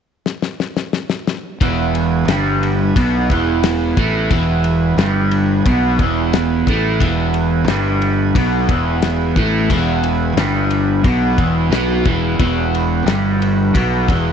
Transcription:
0.26 snare
0.42 snare
0.60 snare
0.77 snare
0.93 snare
1.10 snare
1.27 snare
1.61 fingered electric bass E1, overdriven electric guitar E2 E3, tonewheel organ E3 B3 B4 G#5, kick, ride
1.95 ride
2.28 fingered electric bass G1, overdriven electric guitar G2 G3, snare, ride
2.63 ride
2.96 fingered electric bass B1, overdriven electric guitar B2 B3, kick, ride
3.30 fingered electric bass E1, overdriven electric guitar E2 E3, kick, ride
3.63 snare, ride
3.97 fingered electric bass A1, overdriven electric guitar A2 A3, kick, ride
4.30 fingered electric bass E1, overdriven electric guitar E2 E3, kick, ride
4.64 ride
4.97 fingered electric bass G1, overdriven electric guitar G2 G3, snare, ride
5.31 ride
5.66 fingered electric bass B1, overdriven electric guitar B2 B3, kick, ride
5.99 fingered electric bass E1, overdriven electric guitar E2 E3, kick, ride
6.33 snare, ride
6.66 fingered electric bass A1, overdriven electric guitar A2 A3, kick, ride
7.00 fingered electric bass E1, overdriven electric guitar E2 E3, kick, ride
7.34 ride
7.68 fingered electric bass G1, overdriven electric guitar G2 G3, snare, ride
8.02 ride
8.35 fingered electric bass B1, overdriven electric guitar B2 B3, kick, ride
8.69 fingered electric bass E1, overdriven electric guitar E2 E3, kick, ride
9.02 snare, ride
9.35 fingered electric bass A1, overdriven electric guitar A2 A3, kick, ride
9.69 fingered electric bass E1, overdriven electric guitar E2 E3, kick, ride
10.04 ride
10.36 fingered electric bass G1, overdriven electric guitar G2 G3, snare, ride
10.71 ride
11.04 fingered electric bass B1, overdriven electric guitar B2 B3, kick, ride
11.38 fingered electric bass E1, overdriven electric guitar E2 E3, kick, ride
11.70 fingered electric bass B1, overdriven electric guitar B2 B3, snare, ride
12.05 fingered electric bass E1, overdriven electric guitar E2 E3, kick, ride
12.39 fingered electric bass E1, overdriven electric guitar E2 E3, tonewheel organ F#4, kick, ride
12.75 ride
13.06 fingered electric bass G1, overdriven electric guitar G2 G3, snare, ride
13.42 ride
13.74 fingered electric bass B1, overdriven electric guitar B2 B3, kick, ride
14.08 fingered electric bass E1, overdriven electric guitar E2 E3, kick, ride

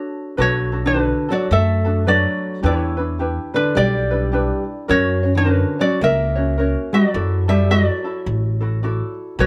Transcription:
Already playing: ukulele D4 F#4 A4 C#5
0.37 upright bass B1, steel-string acoustic guitar F#3, ukulele D4 F#4 A4 B4
0.42 ukulele C#5
0.72 ukulele D4 F#4 A4
0.86 steel-string acoustic guitar D3, ukulele D4 C5
0.94 ukulele D4 F#4 A4 B4
1.04 ukulele B4
1.29 steel-string acoustic guitar F#3, ukulele D4 F#4 A4 D5
1.51 upright bass F#2, steel-string acoustic guitar A3, ukulele A4 E5
1.85 ukulele D4 F#4 A4
2.07 steel-string acoustic guitar F#3, ukulele D4 F#4 A4 B4 D5
2.63 upright bass E2, steel-string acoustic guitar E3, ukulele D4 E4 G4 B4 C#5
2.97 ukulele D4 E4 B4
3.19 ukulele D4 E4 G4 B4
3.54 steel-string acoustic guitar D3, ukulele D4 E4 B4
3.75 upright bass B1, steel-string acoustic guitar G3, ukulele G4 D5
4.11 ukulele D4 E4 B4
4.32 ukulele D4 E4 G4 B4
4.88 upright bass F#2, steel-string acoustic guitar F#3, ukulele C#4 F#4 A#4 C#5
5.23 ukulele C#4 F#4 C#5
5.35 steel-string acoustic guitar D3, ukulele D4 C5
5.45 ukulele C#4 F#4 A#4 C#5
5.54 ukulele B4
5.79 steel-string acoustic guitar F#3, ukulele C#4 F#4 C#5 D5
6.01 upright bass C#2, steel-string acoustic guitar A#3, ukulele A#4 E5
6.36 ukulele C#4 F#4 C#5
6.58 ukulele C#4 F#4 A#4 C#5
6.93 steel-string acoustic guitar F#3, ukulele F#4 D5
7.14 upright bass F#2, ukulele E4 F#4 A4 D5
7.48 steel-string acoustic guitar G3, ukulele E4 F#4 G4 A4 E5
7.70 steel-string acoustic guitar F#3, ukulele E4 F#4 A4 D5
8.04 ukulele E4 F#4 A4
8.26 upright bass A1
8.61 ukulele E4 F#4 A4
8.83 ukulele E4 F#4 A4 D5
9.39 upright bass B1, steel-string acoustic guitar F#3, ukulele F#4 A4 B4 C#5 D5

